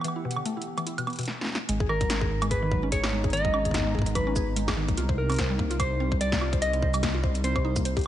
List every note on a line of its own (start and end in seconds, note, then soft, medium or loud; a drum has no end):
0.00 1.28 E3 medium
0.00 1.28 B3 medium
0.00 1.24 G4 medium
0.00 1.28 G4 medium
0.00 1.28 F#5 medium
0.00 high woodblock soft
0.04 0.15 E3 loud
0.04 closed hi-hat medium
0.04 high woodblock soft
0.16 0.22 E4 medium
0.25 0.36 B2 loud
0.31 closed hi-hat medium
0.36 0.42 D3 medium
0.36 high woodblock medium
0.46 0.53 A3 loud
0.46 closed hi-hat medium
0.57 0.63 E4 medium
0.62 closed hi-hat soft
0.78 0.86 E3 loud
0.78 closed hi-hat soft
0.78 high woodblock medium
0.87 0.94 E4 medium
0.87 closed hi-hat medium
0.98 1.07 B2 loud
0.98 closed hi-hat soft
0.98 high woodblock medium
1.07 1.15 B3 medium
1.07 closed hi-hat soft
1.07 high woodblock medium
1.10 closed hi-hat soft
1.13 closed hi-hat soft
1.16 closed hi-hat soft
1.19 1.25 B2 loud
1.19 closed hi-hat soft
1.21 closed hi-hat soft
1.23 closed hi-hat soft
1.25 snare medium
1.25 closed hi-hat soft
1.41 snare medium
1.44 snare medium
1.47 snare soft
1.49 snare soft
1.52 snare soft
1.55 snare medium
1.58 snare soft
1.60 snare soft
1.69 4.96 G#1 medium
1.69 4.98 G#3 medium
1.69 1.80 G#3 loud
1.69 closed hi-hat medium
1.80 1.86 G#4 medium
1.80 kick loud
1.89 2.00 D#3 loud
1.89 2.47 A#4 medium
1.89 high woodblock medium
1.95 4.98 B3 medium
2.01 2.07 F#3 medium
2.01 kick loud
2.01 closed hi-hat medium
2.07 2.18 C#4 loud
2.07 8.07 D#4 medium
2.07 snare loud
2.07 closed hi-hat medium
2.21 2.27 G#4 medium
2.21 kick loud
2.42 2.51 G#3 loud
2.42 closed hi-hat medium
2.42 high woodblock medium
2.51 2.59 G#4 medium
2.51 2.92 B4 medium
2.51 kick loud
2.51 closed hi-hat medium
2.63 2.71 D#3 loud
2.67 6.30 A#5 medium
2.72 2.79 F#3 medium
2.72 kick loud
2.83 2.89 C#4 loud
2.92 3.00 G#4 medium
2.92 3.33 C#5 loud
2.92 kick loud
2.92 closed hi-hat medium
3.04 snare loud
3.04 high woodblock medium
3.13 3.24 G#3 loud
3.24 3.30 G#4 medium
3.24 kick loud
3.24 closed hi-hat soft
3.30 4.15 D#5 loud
3.30 closed hi-hat soft
3.33 3.44 D#3 loud
3.33 closed hi-hat medium
3.37 closed hi-hat soft
3.45 3.51 F#3 medium
3.45 kick loud
3.54 3.61 C#4 loud
3.54 high woodblock medium
3.65 3.71 G#4 medium
3.65 kick medium
3.65 closed hi-hat medium
3.71 kick medium
3.71 snare loud
3.71 closed hi-hat medium
3.78 kick medium
3.86 3.94 G#3 loud
3.95 4.03 G#4 medium
3.95 kick soft
3.99 kick medium
4.02 kick medium
4.06 4.15 D#3 loud
4.06 closed hi-hat medium
4.15 4.23 F#3 medium
4.15 4.54 B4 medium
4.15 kick loud
4.15 closed hi-hat medium
4.15 high woodblock medium
4.27 4.33 C#4 loud
4.36 4.44 G#4 medium
4.36 kick loud
4.36 cabasa medium
4.56 4.67 G#3 loud
4.56 closed hi-hat medium
4.68 4.74 G#4 medium
4.68 kick loud
4.68 snare loud
4.68 high woodblock medium
4.77 4.88 D#3 loud
4.88 4.95 F#3 medium
4.88 kick loud
4.88 closed hi-hat soft
4.97 8.07 C2 medium
4.97 8.07 C3 medium
4.97 5.05 F4 loud
4.97 closed hi-hat medium
5.09 5.15 C5 medium
5.09 kick loud
5.18 5.82 A#4 medium
5.30 5.38 C4 loud
5.30 closed hi-hat soft
5.30 high woodblock soft
5.32 closed hi-hat soft
5.34 closed hi-hat soft
5.36 snare loud
5.36 closed hi-hat soft
5.39 5.46 C5 medium
5.39 kick loud
5.39 closed hi-hat medium
5.50 5.59 G3 loud
5.50 8.07 G3 medium
5.59 5.67 A#3 medium
5.59 kick loud
5.71 5.77 F4 loud
5.71 closed hi-hat medium
5.80 6.20 C5 loud
5.80 5.87 C5 medium
5.80 kick loud
5.80 closed hi-hat medium
5.80 high woodblock medium
6.00 6.11 C4 loud
6.12 6.18 C5 medium
6.12 kick loud
6.21 6.32 G3 loud
6.21 6.59 D5 loud
6.21 closed hi-hat medium
6.32 6.38 A#3 medium
6.32 kick loud
6.32 snare loud
6.41 6.49 F4 loud
6.41 high woodblock medium
6.53 6.59 C5 medium
6.53 kick loud
6.53 closed hi-hat soft
6.62 7.44 D#5 loud
6.62 closed hi-hat medium
6.73 6.82 C4 loud
6.73 closed hi-hat soft
6.82 6.90 C5 medium
6.82 kick loud
6.94 7.03 G3 loud
6.94 closed hi-hat medium
6.94 cabasa medium
6.94 high woodblock medium
7.03 7.11 A#3 medium
7.03 kick loud
7.03 snare loud
7.03 closed hi-hat medium
7.14 7.21 F4 loud
7.24 7.31 C5 medium
7.24 kick loud
7.35 closed hi-hat medium
7.44 7.55 C4 loud
7.44 7.82 C5 medium
7.44 closed hi-hat medium
7.56 7.62 C5 medium
7.56 kick loud
7.56 high woodblock soft
7.65 7.76 D#4 loud
7.76 7.82 A#3 medium
7.76 kick loud
7.76 cabasa medium
7.85 7.93 C5 medium
7.85 closed hi-hat medium
7.97 8.00 G4 loud
7.97 kick loud
7.97 closed hi-hat soft
7.99 closed hi-hat soft
8.01 closed hi-hat soft
8.03 closed hi-hat soft